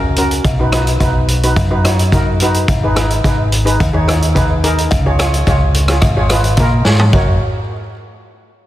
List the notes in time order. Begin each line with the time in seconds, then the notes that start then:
Already playing: C#2
0.16 C#4 F#4 A#4, closed hi-hat
0.31 closed hi-hat
0.44 B1, kick, closed hi-hat, cowbell
0.59 D#4 F#4 B4
0.72 D#4 F#4 B4, cross-stick, closed hi-hat, cowbell
0.87 closed hi-hat
1.00 B1 D#4 F#4 B4, kick, closed hi-hat, cowbell
1.28 closed hi-hat
1.43 D#4 F#4 B4, closed hi-hat
1.56 F#2, kick, closed hi-hat, cowbell
1.70 D#4 F#4 B4
1.84 D#4 F#4 C#5, cross-stick, closed hi-hat, cowbell
1.99 closed hi-hat
2.12 D#4 F#4 A#4, kick, closed hi-hat, cowbell
2.40 D#4 F#4 B4, closed hi-hat
2.54 closed hi-hat
2.68 G#1, kick, closed hi-hat, cowbell
2.84 D#4 G#4 B4
2.95 D#4 G#4 B4, cross-stick, closed hi-hat, cowbell
3.10 closed hi-hat
3.24 G#1 D#4 G#4 B4, kick, closed hi-hat, cowbell
3.52 closed hi-hat
3.65 D#4 G#4 B4, closed hi-hat
3.80 D#2, kick, closed hi-hat, cowbell
3.93 D#4 G#4 C#5
4.07 D#4 G#4 C#5, cross-stick, closed hi-hat, cowbell
4.22 closed hi-hat
4.35 D#4 G#4 B4, kick, closed hi-hat, cowbell
4.64 D#4 G#4 A#4, closed hi-hat
4.78 closed hi-hat
4.91 C#2, kick, closed hi-hat, cowbell
5.06 F4 G#4 C#5
5.19 F4 G#4 C#5, cross-stick, closed hi-hat, cowbell
5.34 closed hi-hat
5.47 C#2 F4 G#4 C#5, kick, closed hi-hat, cowbell
5.74 closed hi-hat
5.88 F4 G#4 C#5, cross-stick, closed hi-hat
6.02 G#1, kick, cross-stick, closed hi-hat, cowbell
6.17 F4 G#4 C#5
6.29 F4 G#4 B4, cross-stick, closed hi-hat, cowbell
6.44 closed hi-hat
6.57 A#2 F4 G#4 A#4, kick, closed hi-hat, cowbell
6.85 G#2 F4 G#4 C#5, snare
6.99 floor tom
7.13 F#1 F#4 A#4 C#5, kick, cowbell